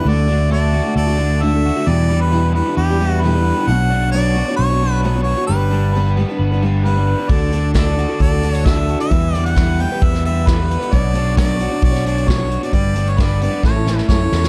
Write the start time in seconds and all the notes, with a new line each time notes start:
0.05 D2 D3 A3 D4 F#4 D5
0.28 D3 A3 D4 F#4
0.50 D3 A3 D4 F#4 A4 D5
0.73 D3 A3 D4 F#4
0.84 A3 D4 F#4
0.96 D2 A4 D5
1.07 A3 D4 F#4
1.17 D3 A3 D4 F#4
1.42 D3 A3 D4 F#4 E5
1.53 A3 D4 F#4
1.66 F#4
1.76 A3 D4 F#4
1.86 E2 B2 E3 G3 D4 G4 D5
2.09 E3 G3 D4 G4
2.21 B4
2.31 E2 B2 E3 G3 D4 G4 B4
2.54 E3 G3 B3 D4 B4
2.58 G4
2.68 E3 G3 D4 G4
2.75 E2 G4 B4
2.90 E3 G3 D4 G4
3.00 E3 G3 D4 G4
3.09 F#4
3.21 E2 B2 D3 E3 G3 D4 B4
3.26 G4
3.35 E3 G3 D4 G4
3.44 B3
3.58 E3 G3 D4 G4
3.67 B1 B2 F#3 B3 D4 F#4 C#5 F#5
3.91 B3 D4 F#4 C#5
4.12 B2 F#3 B3 D4 F#4 C#5 D5
4.36 B3 D4 F#4 C#5
4.48 B3 D4 F#4 C#5
4.56 B1 C#5
4.70 B3 D4 F#4 C#5
4.82 B3 D4 F#4 C#5
4.92 B4
5.02 B2 F#3 B3 D4 B4
5.06 F#4 C#5
5.16 B3 D4 F#4 C#5
5.23 F#4 C#5
5.36 B3 D4 F#4 C#5
5.47 G1 G3 B3 D4 B4
5.51 B4
5.71 G3 B3 D4 B4
5.95 G3 B3 D4 B4
6.17 G3 B3 D4 B4
6.29 B3 D4 B4
6.39 G1 B4
6.52 B3 D4 B4
6.63 G3 B3 D4 B4
6.85 G3 B3 D4 B4
6.96 B3 D4 B4
7.07 B3
7.18 B3 D4 B4
7.29 D2 D3 D4 F#4 A4 D5, kick, closed hi-hat
7.52 D3 D4 F#4 A4, closed hi-hat
7.74 D3 D4 F#4 A4 D5, kick, snare, closed hi-hat
7.96 D3 D4 F#4 A4, closed hi-hat
8.08 D4 F#4 A4
8.20 D2 A4 D5, kick, closed hi-hat
8.31 D4 F#4 A4
8.41 D3 D4 F#4 A4, closed hi-hat
8.54 C#5, closed hi-hat
8.64 D3 D4 F#4 A4 E5, kick, snare, closed hi-hat
8.75 D4 F#4 A4
8.89 F#4, closed hi-hat
9.00 D4 F#4 A4 E5, closed hi-hat
9.11 E2 D3 E3 G3 B3 B4, kick, closed hi-hat
9.34 D3 G3 B3 B4 D5, closed hi-hat
9.46 F#5, closed hi-hat
9.56 D3 E3 G3 B3 B4, kick, snare, closed hi-hat
9.78 D3 G3 B3 B4 G5, closed hi-hat
9.92 G3 B3 B4
10.02 E2 B4 E5, kick, closed hi-hat
10.13 G3 B3 B4, snare
10.25 D3 G3 B3 B4 E5, closed hi-hat
10.47 D3 E3 G3 B3 B4, kick, snare, closed hi-hat
10.59 G3 B3 B4
10.71 B3, closed hi-hat
10.79 G3 B3 B4, closed hi-hat
10.91 B1 B2 F#3 B3 D4 F#4 C#5 D5, kick, closed hi-hat
11.13 B3 D4 F#4 C#5, closed hi-hat
11.37 B2 F#3 B3 D4 F#4 C#5 D5, kick, snare, closed hi-hat
11.58 B3 D4 F#4 C#5, closed hi-hat
11.70 B3 D4 F#4 C#5
11.82 B1 C#5 D5, kick, closed hi-hat
11.92 B3 D4 F#4 C#5, snare
12.04 B3 D4 F#4 C#5 D5, closed hi-hat
12.18 closed hi-hat
12.27 B2 F#3 B3 D4 F#4 C#5, kick, snare, closed hi-hat
12.38 B3 D4 F#4 C#5
12.50 F#4, closed hi-hat
12.61 B3 D4 F#4 C#5 D5, closed hi-hat
12.73 G1 G3 B3 D4 B4 D5, kick, closed hi-hat
12.95 G3 B3 D4 B4, closed hi-hat
13.07 C#5, closed hi-hat
13.17 G3 B3 D4 B4 D5, kick, snare, closed hi-hat
13.41 G3 B3 D4 B4 D5, closed hi-hat
13.50 B3 D4 B4
13.63 A1 A2 A3 C#4 E4 A4 C#5, kick, snare
13.76 C#4 E4 A4
13.87 A3 C#4 E4 A4, snare
13.99 snare
14.09 F#2 A2 A3 C#4 E4 A4 C#5, kick, snare
14.21 C#4 E4 A4
14.30 E2 E4, snare
14.44 A4, snare